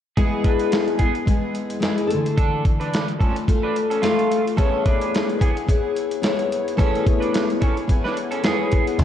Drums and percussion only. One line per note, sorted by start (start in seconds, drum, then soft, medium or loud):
0.17 kick medium
0.17 closed hi-hat medium
0.44 kick medium
0.44 closed hi-hat medium
0.59 closed hi-hat soft
0.72 snare loud
0.72 closed hi-hat medium
0.88 closed hi-hat soft
0.99 kick medium
0.99 closed hi-hat medium
1.15 closed hi-hat soft
1.27 kick medium
1.27 closed hi-hat medium
1.55 closed hi-hat medium
1.70 closed hi-hat soft
1.82 snare medium
1.82 closed hi-hat medium
1.98 closed hi-hat soft
2.11 closed hi-hat medium
2.26 closed hi-hat soft
2.38 kick loud
2.38 closed hi-hat medium
2.65 kick medium
2.65 closed hi-hat medium
2.81 closed hi-hat soft
2.94 snare loud
2.94 closed hi-hat medium
3.08 closed hi-hat soft
3.21 kick medium
3.21 closed hi-hat medium
3.36 closed hi-hat soft
3.48 kick medium
3.48 closed hi-hat medium
3.76 closed hi-hat medium
3.91 closed hi-hat medium
4.03 snare medium
4.03 closed hi-hat medium
4.19 closed hi-hat soft
4.32 closed hi-hat medium
4.48 closed hi-hat soft
4.58 kick loud
4.58 closed hi-hat medium
4.86 kick medium
4.86 closed hi-hat medium
5.02 closed hi-hat soft
5.15 snare medium
5.15 closed hi-hat medium
5.30 closed hi-hat soft
5.41 kick medium
5.41 closed hi-hat medium
5.57 closed hi-hat soft
5.69 kick medium
5.69 closed hi-hat medium
5.97 closed hi-hat medium
6.12 closed hi-hat soft
6.23 snare medium
6.23 closed hi-hat medium
6.39 closed hi-hat soft
6.52 closed hi-hat medium
6.68 closed hi-hat soft
6.79 kick medium
6.79 closed hi-hat medium
6.95 closed hi-hat soft
7.07 kick medium
7.07 closed hi-hat medium
7.22 closed hi-hat soft
7.34 snare medium
7.34 closed hi-hat medium
7.50 closed hi-hat soft
7.62 kick medium
7.62 closed hi-hat medium
7.77 closed hi-hat soft
7.89 kick medium
7.89 closed hi-hat medium
8.05 snare soft
8.17 closed hi-hat medium
8.31 closed hi-hat medium
8.43 snare loud
8.43 closed hi-hat medium
8.71 kick medium
8.71 closed hi-hat medium
8.87 closed hi-hat soft
8.99 kick medium
8.99 closed hi-hat medium
8.99 crash medium